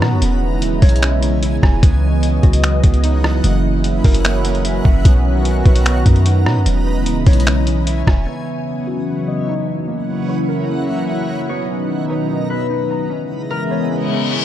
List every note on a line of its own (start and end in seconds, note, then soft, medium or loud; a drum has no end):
0.00 0.13 B2 loud
0.00 0.20 D#3 medium
0.00 0.18 F#3 medium
0.00 0.22 B3 medium
0.00 1.80 B3 medium
0.00 0.19 C#4 medium
0.00 0.20 D#4 medium
0.00 0.22 D#4 medium
0.00 0.20 F#4 medium
0.00 0.20 B4 medium
0.00 0.22 B4 medium
0.00 0.20 A#5 medium
0.00 0.22 A#5 loud
0.00 cross-stick medium
0.12 0.21 F#2 loud
0.21 0.64 E1 loud
0.21 5.01 C#3 medium
0.21 5.01 E3 medium
0.21 1.81 G#3 medium
0.21 1.01 C#4 medium
0.21 5.01 E4 medium
0.21 1.81 E4 medium
0.21 1.81 C#5 medium
0.21 1.81 G#5 medium
0.21 closed hi-hat medium
0.62 0.81 D#1 loud
0.62 closed hi-hat medium
0.82 1.60 B1 loud
0.82 1.82 C#5 loud
0.82 kick medium
0.82 closed hi-hat medium
0.82 open hi-hat soft
0.89 closed hi-hat medium
0.96 closed hi-hat medium
1.02 1.22 C#4 medium
1.02 finger snap loud
1.02 closed hi-hat medium
1.23 1.83 C#4 medium
1.23 closed hi-hat medium
1.42 1.83 E4 medium
1.42 closed hi-hat medium
1.62 1.82 E1 loud
1.62 1.83 G#5 medium
1.62 kick medium
1.62 cross-stick loud
1.83 2.41 C#2 loud
1.83 6.62 F#3 medium
1.83 2.62 B3 medium
1.83 3.42 B3 medium
1.83 3.42 B4 medium
1.83 3.42 D#5 medium
1.83 5.02 F#5 medium
1.83 kick loud
1.83 closed hi-hat medium
2.23 closed hi-hat medium
2.43 2.82 C#2 loud
2.43 3.44 F#4 loud
2.43 kick medium
2.43 closed hi-hat soft
2.53 closed hi-hat medium
2.63 finger snap loud
2.63 closed hi-hat medium
2.83 3.42 C#2 loud
2.83 3.44 B3 medium
2.83 kick loud
2.83 closed hi-hat medium
2.94 closed hi-hat soft
3.04 3.44 D#4 medium
3.04 closed hi-hat medium
3.24 3.44 D#5 medium
3.24 cross-stick loud
3.43 4.02 F#1 loud
3.43 4.23 A#3 loud
3.43 6.63 C#4 medium
3.43 5.03 E4 medium
3.43 5.03 A#4 medium
3.43 closed hi-hat medium
3.84 closed hi-hat medium
4.04 4.82 F#1 loud
4.04 5.05 A#4 loud
4.04 kick medium
4.04 closed hi-hat soft
4.04 open hi-hat soft
4.14 closed hi-hat medium
4.25 4.44 A#3 medium
4.25 finger snap loud
4.25 closed hi-hat medium
4.45 5.05 A#3 medium
4.45 closed hi-hat medium
4.55 closed hi-hat soft
4.65 5.05 E4 medium
4.65 closed hi-hat medium
4.85 5.04 F#1 loud
4.85 5.05 F#5 medium
4.85 kick medium
5.05 5.63 B1 loud
5.05 6.65 D#3 medium
5.05 5.85 B3 loud
5.05 8.24 B3 medium
5.05 6.65 D#4 medium
5.05 6.65 F#4 medium
5.05 6.65 B4 medium
5.05 6.65 A#5 medium
5.05 kick loud
5.05 closed hi-hat medium
5.45 closed hi-hat medium
5.65 6.04 B1 loud
5.65 6.66 B4 loud
5.65 kick medium
5.65 closed hi-hat soft
5.76 closed hi-hat medium
5.86 6.05 B3 medium
5.86 finger snap loud
5.86 closed hi-hat medium
6.06 6.47 F#2 loud
6.06 6.66 B3 medium
6.06 kick loud
6.06 closed hi-hat medium
6.16 closed hi-hat soft
6.26 6.65 D#4 medium
6.26 closed hi-hat medium
6.46 6.58 B2 loud
6.46 6.66 A#5 loud
6.46 cross-stick loud
6.56 6.66 F#2 loud
6.65 7.08 E1 loud
6.65 8.26 C#3 medium
6.65 8.26 E3 medium
6.65 8.26 G#3 medium
6.65 7.45 C#4 medium
6.65 8.26 E4 medium
6.65 8.26 C#5 medium
6.65 8.26 G#5 medium
6.65 closed hi-hat medium
7.06 7.26 D#1 loud
7.06 closed hi-hat medium
7.26 8.04 B1 loud
7.26 8.27 C#5 loud
7.26 kick medium
7.26 closed hi-hat medium
7.26 open hi-hat soft
7.33 closed hi-hat medium
7.40 closed hi-hat medium
7.46 7.66 C#4 medium
7.46 finger snap loud
7.46 closed hi-hat medium
7.67 8.27 C#4 medium
7.67 closed hi-hat medium
7.87 8.27 E4 medium
7.87 closed hi-hat medium
8.07 8.26 E1 loud
8.07 8.27 G#5 medium
8.07 kick medium
8.07 cross-stick loud
8.27 9.87 C#3 medium
8.27 11.46 E3 medium
8.27 13.06 F#3 medium
8.27 9.07 B3 medium
8.27 9.87 B3 medium
8.27 9.87 C#4 medium
8.27 11.46 E4 medium
8.27 9.87 B4 medium
8.27 9.87 C#5 medium
8.27 9.33 E5 medium
8.27 11.46 F#5 medium
8.27 9.87 D#6 medium
8.87 9.88 F#4 medium
9.08 9.26 B3 medium
9.27 9.88 B3 medium
9.27 11.05 D#5 medium
9.48 9.88 D#4 medium
9.68 9.88 D#5 medium
9.88 11.48 C#3 medium
9.88 10.68 A#3 medium
9.88 13.07 C#4 medium
9.88 11.48 E4 medium
9.88 13.07 A#5 medium
10.29 11.49 C#5 medium
10.49 11.49 A#4 loud
10.69 10.88 A#3 medium
10.89 11.49 A#3 medium
11.09 11.49 E4 medium
11.29 11.49 F#5 medium
11.49 13.09 B2 medium
11.49 13.09 D#3 medium
11.49 12.29 B3 medium
11.49 13.09 B3 medium
11.49 13.09 D#4 medium
11.49 13.40 C#5 loud
11.49 13.09 D#5 medium
12.10 13.10 B4 medium
12.30 12.49 B3 medium
12.50 13.10 B3 medium
12.50 13.56 B4 medium
12.70 13.09 D#4 medium
12.91 13.11 A#5 medium
13.10 14.45 C#3 medium
13.10 14.45 E3 medium
13.10 14.45 G#3 medium
13.10 14.45 B3 medium
13.10 13.90 C#4 medium
13.10 14.45 C#4 medium
13.10 14.45 E4 medium
13.10 14.45 G#4 medium
13.10 14.45 E5 medium
13.50 14.45 A#4 loud
13.71 14.45 C#5 medium
13.91 14.10 C#4 medium
13.91 reverse cymbal medium
14.11 14.45 C#4 medium
14.31 14.45 E4 medium